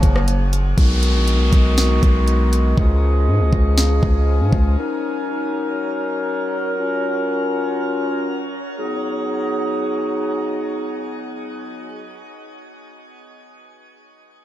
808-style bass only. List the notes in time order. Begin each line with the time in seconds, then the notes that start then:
0.03 F#1
0.78 B1
1.15 A#1
1.34 B1
1.53 B1
2.03 B1
2.78 C#2
3.27 G#2
3.40 C#2
3.53 C#2
4.03 C#2
4.40 G#2
4.53 C#2